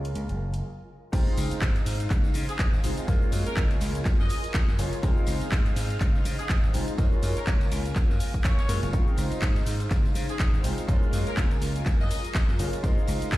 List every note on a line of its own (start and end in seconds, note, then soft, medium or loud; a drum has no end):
0.00 0.11 C#2 medium
0.00 0.64 G#3 medium
0.00 0.64 A#3 medium
0.00 0.64 C#4 medium
0.00 0.63 F4 medium
0.00 0.65 F4 medium
0.00 0.63 A#4 medium
0.00 0.63 G#5 medium
0.05 closed hi-hat medium
0.15 0.26 C#2 medium
0.15 closed hi-hat medium
0.29 0.60 F#1 medium
0.29 closed hi-hat soft
0.54 closed hi-hat medium
1.12 1.24 C#2 loud
1.12 2.81 G#3 medium
1.12 2.81 C4 medium
1.12 3.06 D#4 medium
1.12 2.81 D#4 medium
1.12 2.82 F4 loud
1.12 3.06 C5 medium
1.12 3.06 F5 medium
1.12 kick loud
1.12 closed hi-hat medium
1.12 tambourine medium
1.12 crash loud
1.12 cabasa soft
1.27 cabasa soft
1.37 1.48 C#2 medium
1.37 open hi-hat loud
1.37 tambourine medium
1.37 cabasa medium
1.51 muted slap bass stroke soft
1.51 closed hi-hat medium
1.51 tambourine soft
1.51 cabasa soft
1.62 1.81 G#2 loud
1.62 kick loud
1.62 clap loud
1.62 closed hi-hat medium
1.62 tambourine soft
1.62 cabasa soft
1.75 closed hi-hat soft
1.75 tambourine soft
1.75 cabasa soft
1.86 2.06 G#2 medium
1.86 open hi-hat loud
1.86 tambourine medium
1.86 cabasa medium
2.00 closed hi-hat medium
2.00 tambourine soft
2.00 cabasa soft
2.10 2.30 C#2 medium
2.10 kick loud
2.10 clap medium
2.10 closed hi-hat medium
2.10 cabasa soft
2.24 tambourine soft
2.24 cabasa soft
2.34 2.46 C#3 loud
2.34 open hi-hat loud
2.34 tambourine medium
2.34 cabasa medium
2.49 2.56 G#4 medium
2.49 closed hi-hat medium
2.49 tambourine soft
2.49 cabasa soft
2.59 2.68 G#4 medium
2.59 kick loud
2.59 clap loud
2.59 closed hi-hat medium
2.59 tambourine medium
2.59 cabasa soft
2.73 2.85 G#1 medium
2.73 tambourine soft
2.73 cabasa soft
2.83 2.94 C#2 medium
2.83 3.05 G#3 medium
2.83 3.05 C4 medium
2.83 3.06 D#4 medium
2.83 3.06 F4 medium
2.83 open hi-hat loud
2.83 tambourine medium
2.83 cabasa medium
2.97 closed hi-hat medium
2.97 tambourine soft
2.97 cabasa soft
3.07 3.19 F#2 loud
3.07 4.76 G#3 medium
3.07 4.76 A#3 medium
3.07 4.76 C#4 medium
3.07 5.01 F4 medium
3.07 4.77 F4 loud
3.07 5.01 A#4 medium
3.07 5.01 G#5 medium
3.07 kick loud
3.07 closed hi-hat medium
3.07 tambourine medium
3.07 cabasa soft
3.22 cabasa soft
3.32 3.43 F#2 medium
3.32 open hi-hat loud
3.32 tambourine loud
3.32 cabasa medium
3.46 3.56 A#4 medium
3.46 muted slap bass stroke soft
3.46 closed hi-hat medium
3.46 tambourine soft
3.46 cabasa soft
3.57 3.76 C#2 loud
3.57 kick loud
3.57 clap loud
3.57 closed hi-hat medium
3.57 tambourine medium
3.57 cabasa soft
3.70 closed hi-hat soft
3.70 tambourine soft
3.70 cabasa soft
3.81 4.01 C#2 medium
3.81 open hi-hat loud
3.81 tambourine loud
3.81 cabasa medium
3.95 closed hi-hat medium
3.95 tambourine soft
3.95 cabasa soft
4.05 kick loud
4.05 clap medium
4.05 closed hi-hat medium
4.05 tambourine medium
4.05 cabasa soft
4.19 4.28 F#2 medium
4.19 4.54 D#5 medium
4.19 tambourine soft
4.19 cabasa soft
4.29 open hi-hat loud
4.29 tambourine medium
4.29 cabasa medium
4.44 closed hi-hat medium
4.44 tambourine soft
4.44 cabasa soft
4.54 kick loud
4.54 clap loud
4.54 closed hi-hat medium
4.54 tambourine medium
4.54 cabasa soft
4.68 4.76 F#2 loud
4.68 tambourine soft
4.68 cabasa soft
4.78 4.89 F#1 loud
4.78 5.00 G#3 medium
4.78 5.01 A#3 medium
4.78 5.01 C#4 medium
4.78 5.01 F4 medium
4.78 open hi-hat loud
4.78 tambourine loud
4.78 cabasa medium
4.93 closed hi-hat medium
4.93 tambourine soft
4.93 cabasa soft
5.02 5.14 C#2 loud
5.02 6.71 G#3 medium
5.02 6.71 C4 medium
5.02 6.96 D#4 medium
5.02 6.71 D#4 medium
5.02 6.72 F4 loud
5.02 6.96 C5 medium
5.02 6.96 F5 medium
5.02 kick loud
5.02 closed hi-hat medium
5.02 tambourine soft
5.02 cabasa soft
5.17 cabasa soft
5.27 5.38 C#2 medium
5.27 open hi-hat loud
5.27 tambourine medium
5.27 cabasa medium
5.41 muted slap bass stroke soft
5.41 closed hi-hat medium
5.41 tambourine soft
5.41 cabasa soft
5.52 5.71 G#2 loud
5.52 kick loud
5.52 clap loud
5.52 closed hi-hat medium
5.52 cabasa soft
5.66 closed hi-hat soft
5.66 tambourine soft
5.66 cabasa soft
5.76 5.96 G#2 medium
5.76 open hi-hat loud
5.76 tambourine loud
5.76 cabasa medium
5.90 closed hi-hat medium
5.90 tambourine soft
5.90 cabasa soft
6.01 6.20 C#2 medium
6.01 kick loud
6.01 clap medium
6.01 closed hi-hat medium
6.01 tambourine medium
6.01 cabasa soft
6.15 tambourine soft
6.15 cabasa soft
6.25 6.36 C#3 loud
6.25 open hi-hat loud
6.25 tambourine loud
6.25 cabasa medium
6.39 6.46 G#4 medium
6.39 closed hi-hat medium
6.39 tambourine soft
6.39 cabasa soft
6.49 6.58 G#4 medium
6.49 kick loud
6.49 clap loud
6.49 closed hi-hat medium
6.49 tambourine soft
6.49 cabasa soft
6.63 6.75 G#1 medium
6.63 tambourine soft
6.63 cabasa soft
6.74 6.85 C#2 loud
6.74 6.96 G#3 medium
6.74 6.96 C4 medium
6.74 6.96 D#4 medium
6.74 6.96 F4 medium
6.74 open hi-hat loud
6.74 tambourine loud
6.74 cabasa medium
6.88 closed hi-hat medium
6.88 tambourine soft
6.88 cabasa soft
6.98 7.09 F#2 loud
6.98 8.66 G#3 medium
6.98 8.66 A#3 medium
6.98 8.67 C#4 medium
6.98 8.91 F4 medium
6.98 8.67 F4 loud
6.98 8.91 A#4 medium
6.98 8.91 G#5 medium
6.98 kick loud
6.98 closed hi-hat medium
6.98 tambourine medium
6.98 cabasa soft
7.12 cabasa soft
7.22 7.33 F#2 medium
7.22 open hi-hat loud
7.22 tambourine loud
7.22 cabasa medium
7.37 7.47 A#4 medium
7.37 muted slap bass stroke soft
7.37 closed hi-hat medium
7.37 tambourine soft
7.37 cabasa soft
7.47 7.67 C#2 loud
7.47 kick loud
7.47 clap loud
7.47 closed hi-hat medium
7.47 tambourine medium
7.47 cabasa soft
7.61 closed hi-hat soft
7.61 tambourine soft
7.61 cabasa soft
7.71 7.91 C#2 medium
7.71 open hi-hat loud
7.71 tambourine loud
7.71 cabasa medium
7.85 closed hi-hat medium
7.85 tambourine soft
7.85 cabasa soft
7.96 kick loud
7.96 clap medium
7.96 closed hi-hat medium
7.96 tambourine medium
7.96 cabasa soft
8.10 8.18 F#2 medium
8.10 tambourine soft
8.10 cabasa soft
8.20 open hi-hat loud
8.20 tambourine loud
8.20 cabasa medium
8.34 kick medium
8.34 closed hi-hat medium
8.34 tambourine soft
8.34 cabasa soft
8.44 8.99 C#5 loud
8.44 kick loud
8.44 clap loud
8.44 closed hi-hat medium
8.44 tambourine medium
8.44 cabasa soft
8.59 closed hi-hat soft
8.59 tambourine soft
8.59 cabasa soft
8.69 8.80 F#2 medium
8.69 8.91 G#3 medium
8.69 8.91 A#3 medium
8.69 8.91 C#4 medium
8.69 8.91 F4 medium
8.69 open hi-hat loud
8.69 tambourine loud
8.69 cabasa medium
8.83 8.91 F#1 loud
8.83 closed hi-hat soft
8.83 tambourine soft
8.83 cabasa soft
8.92 9.04 C#2 medium
8.92 10.61 G#3 medium
8.92 10.61 C4 medium
8.92 10.87 D#4 medium
8.92 10.62 D#4 medium
8.92 10.62 F4 loud
8.92 10.87 C5 medium
8.92 10.87 F5 medium
8.92 kick loud
8.92 closed hi-hat medium
8.92 tambourine soft
8.92 cabasa soft
9.07 cabasa soft
9.17 9.28 C#2 medium
9.17 open hi-hat loud
9.17 tambourine medium
9.17 cabasa medium
9.32 muted slap bass stroke soft
9.32 closed hi-hat medium
9.32 tambourine soft
9.32 cabasa soft
9.42 9.62 G#2 loud
9.42 kick loud
9.42 clap loud
9.42 closed hi-hat medium
9.42 tambourine medium
9.42 cabasa soft
9.56 closed hi-hat soft
9.56 tambourine soft
9.56 cabasa soft
9.66 9.86 G#2 medium
9.66 open hi-hat loud
9.66 tambourine medium
9.66 cabasa medium
9.80 closed hi-hat medium
9.80 tambourine soft
9.80 cabasa soft
9.91 10.10 C#2 medium
9.91 kick loud
9.91 clap medium
9.91 closed hi-hat medium
9.91 tambourine medium
9.91 cabasa soft
10.05 tambourine soft
10.05 cabasa soft
10.15 10.26 C#3 loud
10.15 open hi-hat loud
10.15 tambourine medium
10.15 cabasa medium
10.29 10.36 G#4 medium
10.29 closed hi-hat medium
10.29 tambourine soft
10.29 cabasa soft
10.39 10.49 G#4 medium
10.39 kick loud
10.39 clap loud
10.39 closed hi-hat medium
10.39 cabasa soft
10.54 10.66 G#1 loud
10.54 tambourine soft
10.54 cabasa soft
10.64 10.75 C#2 medium
10.64 10.86 G#3 medium
10.64 10.86 C4 medium
10.64 10.86 D#4 medium
10.64 10.86 F4 medium
10.64 open hi-hat loud
10.64 tambourine medium
10.64 cabasa medium
10.78 closed hi-hat soft
10.78 tambourine soft
10.78 cabasa soft
10.88 10.99 F#2 loud
10.88 12.56 G#3 medium
10.88 12.57 A#3 medium
10.88 12.57 C#4 medium
10.88 12.82 F4 medium
10.88 12.57 F4 loud
10.88 12.82 A#4 medium
10.88 12.82 G#5 medium
10.88 kick loud
10.88 closed hi-hat medium
10.88 tambourine medium
10.88 cabasa soft
11.03 cabasa soft
11.13 11.24 F#2 medium
11.13 open hi-hat loud
11.13 tambourine medium
11.13 cabasa medium
11.27 11.37 A#4 medium
11.27 muted slap bass stroke soft
11.27 closed hi-hat medium
11.27 tambourine soft
11.27 cabasa soft
11.37 11.57 C#2 loud
11.37 kick loud
11.37 clap loud
11.37 closed hi-hat medium
11.37 tambourine soft
11.37 cabasa soft
11.51 closed hi-hat soft
11.51 tambourine soft
11.51 cabasa soft
11.62 11.81 C#2 medium
11.62 open hi-hat loud
11.62 tambourine medium
11.62 cabasa medium
11.75 closed hi-hat medium
11.75 tambourine soft
11.75 cabasa soft
11.86 kick loud
11.86 clap medium
11.86 closed hi-hat medium
11.86 tambourine medium
11.86 cabasa soft
12.00 12.08 F#2 loud
12.00 12.35 D#5 loud
12.00 tambourine soft
12.00 cabasa soft
12.11 open hi-hat loud
12.11 tambourine loud
12.11 cabasa medium
12.24 closed hi-hat medium
12.24 tambourine soft
12.24 cabasa soft
12.35 kick loud
12.35 clap loud
12.35 closed hi-hat medium
12.35 tambourine medium
12.35 cabasa soft
12.49 12.57 F#2 loud
12.49 tambourine soft
12.49 cabasa soft
12.59 12.70 F#1 loud
12.59 12.81 G#3 medium
12.59 12.81 A#3 medium
12.59 12.81 C#4 medium
12.59 12.81 F4 medium
12.59 open hi-hat loud
12.59 tambourine medium
12.59 cabasa medium
12.73 closed hi-hat medium
12.73 tambourine soft
12.73 cabasa soft
12.83 12.94 C#2 loud
12.83 13.38 G#3 loud
12.83 13.38 C4 medium
12.83 13.38 D#4 medium
12.83 13.38 F4 loud
12.83 13.38 C5 medium
12.83 13.38 F5 medium
12.83 kick loud
12.83 closed hi-hat medium
12.83 tambourine medium
12.83 cabasa soft
12.98 cabasa soft
13.07 13.19 C#2 medium
13.07 open hi-hat loud
13.07 tambourine medium
13.07 cabasa medium
13.21 muted slap bass stroke soft
13.21 closed hi-hat medium
13.21 tambourine soft
13.21 cabasa soft
13.32 13.38 G#2 loud
13.32 kick loud
13.32 clap loud
13.32 closed hi-hat medium
13.32 cabasa soft